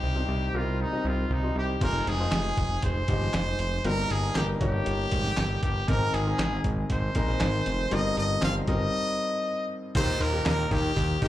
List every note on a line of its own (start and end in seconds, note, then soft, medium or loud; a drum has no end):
0.00 0.24 C2 medium
0.00 0.50 C3 medium
0.00 0.15 G3 medium
0.00 0.16 C4 medium
0.00 0.16 D#4 medium
0.00 0.58 G4 medium
0.00 0.16 C5 medium
0.15 0.43 G3 medium
0.15 0.43 C4 medium
0.15 0.43 D#4 medium
0.15 0.43 C5 medium
0.28 0.49 C2 loud
0.53 0.85 C2 medium
0.53 0.81 G3 medium
0.53 0.81 C4 medium
0.53 0.81 D#4 medium
0.53 0.83 F4 medium
0.53 0.81 A#4 medium
0.82 1.09 D#4 medium
0.92 1.28 G3 medium
0.92 1.29 C4 soft
0.92 1.29 D#4 medium
0.92 1.29 D#5 medium
1.05 1.26 C2 medium
1.05 1.34 F4 medium
1.30 1.51 C2 loud
1.30 1.57 D#4 medium
1.43 1.70 G3 medium
1.43 1.71 C4 soft
1.43 1.71 D#4 soft
1.43 1.71 C5 medium
1.55 1.77 C2 medium
1.55 1.81 G4 medium
1.81 2.02 F1 medium
1.81 2.54 C3 medium
1.81 2.09 G#3 medium
1.81 2.09 D#4 medium
1.81 2.09 F4 medium
1.81 2.10 A#4 medium
1.81 2.09 C5 medium
1.81 kick medium
1.81 closed hi-hat medium
1.81 crash medium
2.07 2.28 F1 medium
2.07 2.83 G#4 medium
2.07 closed hi-hat medium
2.19 2.83 G#3 medium
2.19 2.83 D#4 medium
2.19 2.83 F4 medium
2.19 2.84 C5 medium
2.32 2.53 F1 medium
2.32 snare loud
2.32 clap medium
2.32 closed hi-hat medium
2.57 2.78 F1 loud
2.57 kick medium
2.57 closed hi-hat medium
2.82 3.04 F1 medium
2.82 3.87 C5 medium
2.82 kick medium
2.82 closed hi-hat medium
3.08 3.29 G1 medium
3.08 3.63 G#3 medium
3.08 3.63 D#4 medium
3.08 3.63 F4 medium
3.08 3.63 G4 medium
3.08 kick medium
3.08 closed hi-hat medium
3.21 snare soft
3.33 3.55 F1 loud
3.33 snare medium
3.33 clap medium
3.33 closed hi-hat medium
3.59 3.80 F1 medium
3.59 closed hi-hat medium
3.84 4.05 G1 loud
3.84 4.57 G2 medium
3.84 4.21 G3 medium
3.84 4.21 A#3 medium
3.84 4.21 D#4 medium
3.84 4.21 A#4 medium
3.84 4.13 A#4 medium
3.84 closed hi-hat medium
4.10 4.31 G1 medium
4.10 4.36 G#4 medium
4.10 closed hi-hat medium
4.35 4.56 G1 medium
4.35 4.54 G3 medium
4.35 4.54 A#3 medium
4.35 4.54 D#4 medium
4.35 4.48 G4 medium
4.35 4.54 A#4 medium
4.35 snare loud
4.35 clap medium
4.35 closed hi-hat medium
4.61 4.82 G1 loud
4.61 5.34 G3 medium
4.61 5.34 A#3 medium
4.61 5.34 D#4 medium
4.61 5.59 G4 medium
4.61 5.34 C#5 medium
4.61 kick medium
4.61 closed hi-hat medium
4.86 5.07 G1 medium
4.86 closed hi-hat medium
5.11 5.33 G#1 medium
5.11 kick medium
5.11 closed hi-hat medium
5.25 snare soft
5.37 5.58 G1 loud
5.37 snare loud
5.37 clap medium
5.37 closed hi-hat medium
5.63 5.84 G1 medium
5.63 5.90 G4 medium
5.63 kick medium
5.63 closed hi-hat medium
5.88 6.09 G#1 loud
5.88 6.60 G#2 medium
5.88 6.61 D#3 medium
5.88 6.15 G#3 medium
5.88 6.15 C4 medium
5.88 6.16 D#4 medium
5.88 6.16 A#4 medium
5.88 kick medium
5.88 closed hi-hat medium
6.13 6.34 G#1 loud
6.13 6.63 G#4 medium
6.13 closed hi-hat medium
6.26 6.90 G#3 medium
6.26 6.90 C4 medium
6.26 6.90 D#4 medium
6.26 6.90 A#4 medium
6.39 6.60 G#1 loud
6.39 snare loud
6.39 clap medium
6.39 closed hi-hat medium
6.64 6.85 G#1 medium
6.64 kick medium
6.64 closed hi-hat medium
6.90 7.11 G#1 medium
6.90 7.95 C5 medium
6.90 kick medium
6.90 closed hi-hat medium
7.15 7.36 A#1 medium
7.15 7.70 G#3 medium
7.15 7.70 C4 medium
7.15 7.70 D#4 medium
7.15 7.70 A#4 medium
7.15 kick medium
7.15 closed hi-hat medium
7.28 snare soft
7.40 7.62 G#1 loud
7.40 snare loud
7.40 clap medium
7.40 closed hi-hat medium
7.66 7.87 F1 medium
7.66 closed hi-hat medium
7.91 8.13 G1 loud
7.91 8.64 G2 medium
7.91 8.28 G3 medium
7.91 8.28 C4 medium
7.91 8.28 D#4 medium
7.91 8.28 A#4 medium
7.91 8.18 D#5 medium
7.91 closed hi-hat medium
8.17 8.38 G1 medium
8.17 8.41 D#5 loud
8.17 closed hi-hat medium
8.42 8.63 G1 loud
8.42 8.61 G3 medium
8.42 8.61 C4 medium
8.42 8.61 D#4 medium
8.42 8.61 C5 medium
8.42 8.55 F5 medium
8.42 snare loud
8.42 clap medium
8.42 closed hi-hat medium
8.67 8.89 G1 loud
8.67 9.40 G3 medium
8.67 9.41 C4 medium
8.67 9.41 D#4 medium
8.67 9.41 A#4 medium
8.67 9.66 D#5 loud
8.67 kick medium
8.67 closed hi-hat medium
9.95 10.16 D#2 loud
9.95 10.68 A#2 medium
9.95 10.22 D#4 medium
9.95 10.23 G4 medium
9.95 10.23 A#4 medium
9.95 10.23 C5 loud
9.95 kick loud
9.95 open hi-hat medium
9.95 crash medium
10.20 10.41 D#2 medium
10.20 10.46 A#4 loud
10.20 open hi-hat medium
10.33 10.97 D#4 medium
10.33 10.97 G4 medium
10.33 10.97 A#4 medium
10.46 10.67 D#2 medium
10.46 10.74 A#4 medium
10.46 snare loud
10.46 clap medium
10.46 open hi-hat loud
10.59 open hi-hat medium
10.71 10.92 D#2 loud
10.71 11.23 G4 loud
10.71 kick medium
10.71 open hi-hat medium
10.96 11.17 D#2 loud
10.96 kick medium
10.96 open hi-hat medium
11.22 11.28 D#2 loud
11.22 11.28 D#4 medium
11.22 11.28 G4 medium
11.22 11.28 A#4 medium
11.22 kick medium
11.22 open hi-hat medium